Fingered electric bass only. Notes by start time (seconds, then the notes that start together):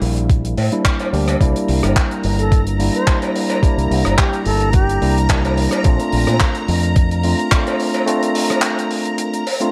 0.02 A#1
0.57 A2
1.13 D2
1.41 C2
1.69 C2
1.83 G1
2.24 G1
3.63 muted fingered electric bass stroke
3.78 C2
3.91 C2
4.06 G1
4.46 G1
5.02 C2
5.85 A#1
6.13 A#1
6.28 A#2
6.68 F2